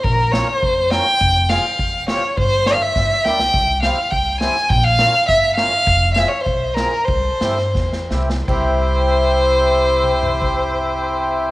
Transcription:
0.04 upright bass A#1, violin A#4, kick
0.32 accordion C#4 F4 A#4, violin C#5, snare
0.47 violin C#5
0.58 violin C5
0.63 upright bass F2, kick
0.90 accordion C#4 F4 A#4, violin G5, snare
1.06 snare
1.21 upright bass F1, kick
1.50 accordion C4 F4 G#4, violin F5, snare
1.64 snare
1.79 upright bass F1, kick
2.08 accordion C4 F4 G4, violin C#5, snare
2.37 upright bass G1, violin C5, kick
2.66 accordion A#3 D4 G4, violin F5, snare
2.82 violin E5
2.96 upright bass G2, kick, snare
3.24 upright bass D2, accordion A#3 D4 E4, violin G5, snare
3.39 upright bass C2, snare
3.54 upright bass C2, kick
3.82 accordion C4 E4 G4, violin F5, snare
4.10 upright bass C2, violin G5, kick
4.40 accordion C4 E4 G4, violin G#5, snare
4.55 snare
4.69 upright bass A#1, violin G5, kick
4.84 violin F5
4.99 accordion C#4 F4 A#4, snare
5.28 upright bass G1, violin E5, kick
5.55 accordion C#4 F4 A#4, violin F5, snare
5.87 upright bass F1, kick
6.14 accordion C4 F4 G#4, violin E5, snare
6.28 violin C#5
6.43 upright bass B1, violin C5, kick
6.74 violin A#4, snare
6.79 accordion C4 F4 G#4
7.05 upright bass C2, violin C5, kick
7.41 upright bass G2, accordion C4 E4 G4, snare
7.58 snare
7.75 upright bass E2, kick, snare
7.93 snare
8.11 upright bass C2, accordion C4 E4 G4, snare
8.30 snare
8.46 upright bass C2, accordion C4 E4 G4, violin C5, kick, crash
10.03 mid tom
10.23 floor tom
10.42 kick

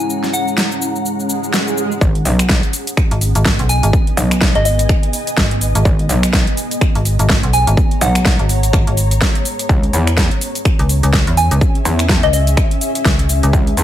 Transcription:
Already playing: analog synth pad G#3 C#4 E4 C#5, ambient pad C#4 G#4 F#5 A#5
0.10 shaker
0.24 snare, shaker
0.33 synth bell F#5, shaker
0.48 shaker
0.58 snare, shaker
0.72 shaker
0.82 shaker
0.96 shaker
1.05 swell, shaker
1.20 shaker
1.30 shaker
1.44 shaker
1.54 snare, shaker
1.68 shaker
1.78 shaker
1.92 shaker
2.01 wobble bass G#1, analog synth pad G#3 B3 D#4 B4, ambient pad B3, kick, shaker
2.15 closed hi-hat
2.25 wobble bass B1, open hi-hat, shaker
2.39 finger snap, closed hi-hat, shaker
2.49 ambient pad D#5, kick, snare, shaker
2.63 closed hi-hat
2.73 open hi-hat, shaker
2.87 closed hi-hat, shaker
2.97 finger snap, kick, shaker
3.11 fm bass G#1, closed hi-hat
3.21 ambient pad G#5, open hi-hat, shaker
3.35 fm bass G#1, closed hi-hat, shaker
3.45 kick, snare, shaker
3.59 fm bass B1, closed hi-hat
3.69 synth bell G#5, open hi-hat, shaker
3.83 fm bass G#1, closed hi-hat, shaker
3.93 kick, shaker
4.07 closed hi-hat
4.17 wobble bass B1, open hi-hat, shaker
4.31 finger snap, closed hi-hat, shaker
4.41 kick, snare, shaker
4.55 fm bass G#1, synth bell D#5, closed hi-hat
4.65 synth bell D#5, open hi-hat, shaker
4.79 closed hi-hat, shaker
4.89 finger snap, kick, shaker
5.03 closed hi-hat
5.13 open hi-hat, shaker
5.27 closed hi-hat, shaker
5.37 fm bass G#1, kick, snare, open hi-hat, shaker
5.51 closed hi-hat
5.61 open hi-hat, shaker
5.75 fm bass G#1, closed hi-hat, shaker
5.85 wobble bass G#1, kick, shaker
5.99 closed hi-hat
6.09 wobble bass B1, open hi-hat, shaker
6.23 finger snap, closed hi-hat, shaker
6.33 kick, snare, shaker
6.47 closed hi-hat
6.51 ambient pad C#5
6.57 open hi-hat, shaker
6.69 ambient pad A#5, closed hi-hat, shaker
6.81 finger snap, kick, shaker
6.95 fm bass G#1, closed hi-hat
7.05 open hi-hat, shaker
7.19 fm bass G#1, closed hi-hat, shaker
7.29 kick, snare, shaker
7.43 fm bass B1, closed hi-hat
7.53 synth bell G#5, open hi-hat, shaker
7.67 fm bass G#1, closed hi-hat, shaker
7.77 kick, shaker
7.91 closed hi-hat
8.01 wobble bass B1, synth bell F#5, open hi-hat, shaker
8.15 finger snap, closed hi-hat, shaker
8.25 kick, snare, shaker
8.39 fm bass G#1, closed hi-hat
8.49 open hi-hat, shaker
8.63 closed hi-hat, shaker
8.73 fm bass G#1, finger snap, kick, shaker
8.87 fm bass G#1, closed hi-hat
8.97 open hi-hat, shaker
9.11 closed hi-hat, shaker
9.21 kick, snare, open hi-hat, shaker
9.35 closed hi-hat
9.45 open hi-hat, shaker
9.59 closed hi-hat, shaker
9.69 wobble bass C#2, ambient pad C#4, analog synth pad C#4 E4 C#5, kick, shaker
9.83 closed hi-hat
9.93 wobble bass E2, open hi-hat, shaker
10.07 ambient pad G#4, finger snap, closed hi-hat, shaker
10.17 kick, snare, shaker
10.31 closed hi-hat
10.41 open hi-hat, shaker
10.48 ambient pad E5
10.55 ambient pad G#5, closed hi-hat, shaker
10.65 finger snap, kick, shaker
10.79 fm bass C#2, closed hi-hat
10.89 open hi-hat, shaker
11.03 fm bass C#2, closed hi-hat, shaker
11.13 kick, snare, shaker
11.27 fm bass E2, closed hi-hat
11.37 synth bell G#5, open hi-hat, shaker
11.51 fm bass C#2, closed hi-hat, shaker
11.61 kick, shaker
11.75 closed hi-hat
11.85 wobble bass E2, open hi-hat, shaker
11.99 finger snap, closed hi-hat, shaker
12.09 kick, snare, shaker
12.23 fm bass C#2, synth bell D#5, closed hi-hat
12.33 synth bell D#5, open hi-hat, shaker
12.47 closed hi-hat, shaker
12.57 finger snap, kick, shaker
12.71 closed hi-hat
12.81 open hi-hat, shaker
12.95 closed hi-hat, shaker
13.05 fm bass C#2, kick, snare, open hi-hat, shaker
13.19 closed hi-hat
13.29 open hi-hat, shaker
13.43 fm bass C#2, closed hi-hat, shaker
13.53 wobble bass C#2, kick, shaker
13.67 closed hi-hat
13.77 wobble bass E2, open hi-hat, shaker

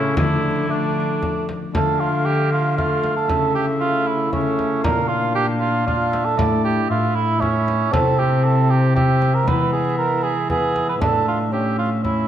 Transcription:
Already playing: harp A2 C#3 A3 C#4 E4, cello C#3, bassoon A3, cor anglais C#4, oboe E4
0.13 harp D3 F3 A3 D4, cello D3, bassoon A3, oboe E4
0.17 cor anglais D4, frame drum
0.67 harp A3 D4 F4, bassoon A3, cor anglais D4, oboe D4
1.22 frame drum
1.49 frame drum
1.72 cello D3, harp D3 A3 D4 F4, bassoon A3, cor anglais A4, oboe F5, frame drum
2.00 cor anglais F4
2.26 cor anglais G4
2.52 cor anglais F4
2.76 bassoon A3, cor anglais F4, oboe F5, frame drum
3.04 frame drum
3.16 cor anglais A4
3.27 cello C#3, harp C#3 A3 E4, bassoon A3, oboe E5, frame drum
3.55 cor anglais G4
3.80 cor anglais F4
4.07 cor anglais E4
4.29 harp C#3 A3 E4, cello C#3, bassoon A3, oboe E5
4.33 cor anglais C#4, frame drum
4.59 frame drum
4.82 cello A#2, harp A#2 D4 F4, bassoon D4, cor anglais A#4, oboe F5, frame drum
5.08 cor anglais F4
5.35 cor anglais G4
5.61 cor anglais F4
5.86 bassoon D4, cor anglais F4, oboe F5, frame drum
6.11 oboe E5, frame drum
6.25 cor anglais A4
6.35 harp A2 A3 D4 E4, bassoon E4, oboe D5, frame drum
6.39 cello A2
6.65 cor anglais G4
6.87 harp A2 A3 E4, cello A2, bassoon E4, cor anglais F4, oboe E5
7.16 cor anglais E4
7.38 harp A3 E4, cor anglais C#4, bassoon E4, oboe E5
7.42 frame drum
7.68 frame drum
7.90 harp C3 C4 E4, cello C3, bassoon C4, cor anglais A4, oboe E5, frame drum
8.19 cor anglais G4
8.44 cor anglais A4
8.70 cor anglais G4
8.95 bassoon C4, cor anglais G4, oboe E5, frame drum
9.22 frame drum
9.35 cor anglais A#4
9.44 harp E3 G#3 B3 E4, cello E3, bassoon B3, oboe E5, frame drum
9.48 cor anglais B4
9.73 cor anglais G#4
9.98 cor anglais A#4
10.23 cor anglais G#4
10.50 bassoon B3, cor anglais G#4, oboe E5, frame drum
10.76 frame drum
10.89 cor anglais B4
10.97 harp A2 A3 D4 E4, bassoon D4
11.01 cello A2, cor anglais A4, oboe E5, frame drum
11.28 cor anglais F4
11.48 harp A3 C#4 E4, cor anglais G4
11.53 bassoon C#4, oboe E5
11.79 cor anglais F4
12.03 bassoon C#4, cor anglais E4, oboe E5, frame drum

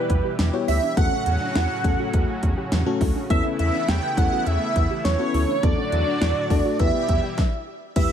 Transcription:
Already playing: analog synth pad B2 E3 G3 E4 G4, analog synth lead B4
0.10 analog synth bass E2, kick, closed hi-hat
0.24 synth arpeggio sound G4
0.39 analog synth bass E2, snare, closed hi-hat
0.53 fm electric piano B3 E4 G4 C#5, synth arpeggio sound F#4
0.68 analog synth bass D2, synth arpeggio sound E4, analog synth lead E5, open hi-hat
0.83 synth arpeggio sound D4
0.97 analog synth bass E2, analog synth pad A2 C#3 F#3 C#4 F#4, fm electric piano A3 C#4 F#4 A4, synth arpeggio sound B3, analog synth lead F#5, kick, closed hi-hat
1.12 synth arpeggio sound C#4
1.26 analog synth bass E2, analog synth lead F#5, closed hi-hat
1.41 synth arpeggio sound D4
1.55 analog synth bass E2, synth arpeggio sound E4, snare, closed hi-hat
1.84 analog synth bass E2, fm electric piano A3 C#4 F#4 A4, kick, closed hi-hat
1.99 synth arpeggio sound F#4
2.14 analog synth bass E2, kick, closed hi-hat
2.43 analog synth bass E2, kick, closed hi-hat
2.57 synth arpeggio sound G4
2.72 analog synth bass E2, snare, closed hi-hat
2.86 fm electric piano A3 C#4 F#4 A4, synth arpeggio sound F#4
3.01 analog synth bass D2, synth arpeggio sound E4, kick, open hi-hat
3.16 synth arpeggio sound D4
3.30 analog synth bass E2, analog synth pad E3 A3 B3 E4, synth arpeggio sound B3, fm electric piano B3 C#4 E4 A4, analog synth lead E5, kick, closed hi-hat
3.45 synth arpeggio sound C#4
3.59 analog synth bass E2, analog synth lead E5, closed hi-hat
3.74 synth arpeggio sound D4
3.88 analog synth bass E2, synth arpeggio sound E4, analog synth lead G5, snare, closed hi-hat
4.17 analog synth bass E2, fm electric piano B3 C#4 E4 A4, analog synth lead F#5, kick, closed hi-hat
4.32 synth arpeggio sound F#4
4.46 analog synth bass E2, analog synth lead E5, closed hi-hat
4.76 analog synth bass E2, kick, closed hi-hat
4.90 synth arpeggio sound G4
5.05 analog synth bass E2, analog synth lead C#5, snare, closed hi-hat
5.19 fm electric piano B3 C#4 E4 A4, synth arpeggio sound F#4
5.34 analog synth bass D2, synth arpeggio sound E4, open hi-hat
5.49 synth arpeggio sound D4
5.63 analog synth bass E2, analog synth pad A2 D3 F#3 D4 F#4, fm electric piano A3 D4 F#4 A4, synth arpeggio sound B3, analog synth lead D5, kick, closed hi-hat
5.78 synth arpeggio sound C#4
5.92 analog synth bass E2, closed hi-hat
6.07 synth arpeggio sound D4
6.21 analog synth bass E2, synth arpeggio sound E4, snare, closed hi-hat
6.50 analog synth bass E2, fm electric piano A3 D4 F#4 A4, kick, open hi-hat
6.65 synth arpeggio sound F#4
6.79 analog synth bass E2, analog synth pad B2 E3 G3 E4 G4, fm electric piano B3 E4 G4 B4, analog synth lead E5, kick, closed hi-hat
7.09 analog synth bass E2, kick, closed hi-hat
7.23 synth arpeggio sound G4
7.38 kick, snare
7.96 analog synth bass E2, analog synth pad B2 E3 G3 E4 G4, fm electric piano G3 B3 E4 G4 B4, synth arpeggio sound B3, analog synth lead E5, kick, closed hi-hat, crash

